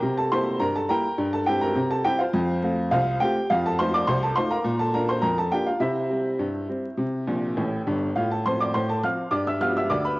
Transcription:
Already playing: A#4 G5 A#5
0.02 C3
0.17 A4 A5
0.32 G3 A#3 E4 C5 C6
0.60 G2 A#4 A#5
0.76 A4 A5
0.89 G3 A#3 E4 A#4 G5 A#5
1.18 G2
1.33 A4 A5
1.46 G3 C4 E4 G4 G5
1.61 A#4 A#5
1.76 C3
1.91 A4 A5
2.05 G3 C4 E4 G4 G5
2.19 F4 C5 F5
2.33 F2
2.63 A3 C4 F4
2.91 C2 F4 C5 F5
3.20 A3 C4 F4 G4 G5
3.50 F2 F4 F5
3.66 A4 A5
3.79 A3 D#4 F4 C5 C6
3.94 D5 D6
4.07 C2 C5 C6
4.23 A4 A5
4.36 A3 D#4 F4 C5 C6
4.51 A#4 F5 A#5
4.64 A#2
4.79 A4 A5
4.94 A#3 D4 F4 A#4 A#5
5.09 C5 C6
5.22 F2 A#4 A#5
5.38 A4 A5
5.51 A#3 D4 F4 G4 G5
5.67 F4 F5
5.80 C3 E4 C5 E5
6.10 G3 C4
6.39 G2
6.68 G3 C4
6.97 C3
7.27 A#1 A#2
7.57 A1 A2
7.87 G1 G2
8.16 A2 F4 F5
8.31 A4 A5
8.46 F3 C4 C5 C6
8.60 D5 D6
8.74 A2 C5 C6
8.89 A4 A5
9.03 F3 C4 F5 F6
9.31 G2 D5 D6
9.47 E5 E6
9.61 F3 G3 B3 F5 F6
9.77 E5 E6
9.90 D2 D5 D6
10.05 B4 B5

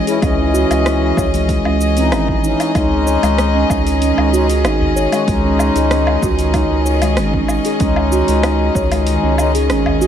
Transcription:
Already playing: E3 C#4 G#4 D#5
0.06 E3 C#4 E4 G#4, open hi-hat, shaker
0.21 C#2 E3 C#4, kick, open hi-hat, low woodblock, shaker
0.25 D#5
0.54 F#4, shaker
0.70 C#2, open hi-hat, low woodblock, shaker
0.86 E4, cross-stick, open hi-hat, shaker
1.17 C#2 C#5, kick, low woodblock, shaker
1.33 E3 G#3 C#4 D#5, open hi-hat, shaker
1.49 kick, open hi-hat, shaker
1.65 C#2 C#4, low woodblock
1.81 shaker
1.96 E3 C4 D#4, open hi-hat, shaker
2.12 G#1 C#4, cross-stick, open hi-hat, low woodblock, shaker
2.28 kick
2.42 E3 C#4 D#4, shaker
2.60 open hi-hat, low woodblock, shaker
2.73 C#2 D#3 G#3 C#4 D#4, kick, open hi-hat, low woodblock, shaker
2.77 D#4
3.07 C#5, shaker
3.23 C#2 G#3, open hi-hat, low woodblock, shaker
3.38 cross-stick, open hi-hat, shaker
3.55 C#4
3.70 C#2, kick, low woodblock, shaker
3.85 G#3 C#4 D#4 G#4, open hi-hat, shaker
4.01 C#4, open hi-hat, shaker
4.18 C#2, low woodblock
4.32 G#3 C#4 D#4 F#4, shaker
4.50 open hi-hat, shaker
4.64 G#1 D#4, cross-stick, open hi-hat, low woodblock, shaker
4.81 udu
4.96 C#5, shaker
5.12 G#3 C#4 F#4, open hi-hat, low woodblock, shaker
5.26 C#2 G#3 C#4 D#4, kick, open hi-hat, shaker
5.44 C#4
5.59 low woodblock, shaker
5.75 C#2 G#4, open hi-hat, shaker
5.91 C#4, cross-stick, open hi-hat, shaker
6.07 low woodblock
6.22 C#2 F#4, kick, shaker
6.38 G#3 C#4 D#4, open hi-hat, shaker
6.54 D#4, kick, open hi-hat, low woodblock, shaker
6.70 C#2
6.86 C#5, shaker
7.02 G#3, open hi-hat, low woodblock, shaker
7.17 G#1, cross-stick, open hi-hat, shaker
7.34 C#4, kick
7.48 low woodblock, shaker
7.65 G#4, open hi-hat, shaker
7.78 C#2 G#3 C#4 D#4, kick, open hi-hat, shaker
7.96 low woodblock
8.12 F#4, shaker
8.28 C#2, open hi-hat, shaker
8.43 D#4, cross-stick, open hi-hat, low woodblock, shaker
8.75 C#2 C#5, kick, shaker
8.91 G#3 C#4 D#4, open hi-hat, low woodblock, shaker
9.07 open hi-hat, shaker
9.23 C#2 C#4
9.37 G#3 C#4 D#4, low woodblock, shaker
9.55 G#4, open hi-hat, shaker
9.70 G#1 C#4, cross-stick, open hi-hat, shaker
9.86 udu, low woodblock
10.01 F#4, shaker

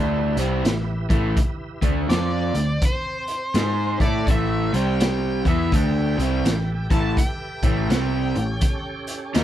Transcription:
Already playing: D2 D3 A3 D4 E4 G4 B4 E5
0.37 C2 C3 G3 C4, closed hi-hat
0.64 A1 A2 E3, snare, closed hi-hat
1.09 A1 A2 E3 A3, kick, closed hi-hat
1.37 kick, closed hi-hat
1.81 D2 D3 A3 C4 D4 C5, kick, closed hi-hat
2.08 F2 F3 C4 F4 D5, snare, closed hi-hat
2.54 D2 D3 A3, closed hi-hat
2.82 C5, kick, closed hi-hat
3.28 closed hi-hat
3.54 G#2 G#3 D#4 G#4, snare, closed hi-hat
4.00 A2 A3 E4 A4 D5, kick, closed hi-hat
4.27 A1 A2 E3 A3 E5, kick, closed hi-hat
4.72 C2 C3 G3 C4 G4 C5 G5, closed hi-hat
4.76 G5
5.00 snare, closed hi-hat
5.44 E2 E3 B3 E4 G4 A4 B4 E5, kick, closed hi-hat
5.48 E5
5.72 D2 D3 A3 D4 G5, kick, closed hi-hat
6.18 C2 C3 G3 C4, closed hi-hat
6.45 A1 A2 E3, snare, closed hi-hat
6.90 A1 A2 E3 A3 A5, kick, closed hi-hat
7.17 G5, kick, closed hi-hat
7.63 A1 A2 E3 A3, kick, closed hi-hat
7.90 C2 C3 G3 C4 G5, snare, closed hi-hat
8.34 A1 A2 E3 C#4 G4 A4 C#5, closed hi-hat
8.61 kick, closed hi-hat
9.07 closed hi-hat
9.34 D#2 D#3 A#3 D#4, snare, closed hi-hat

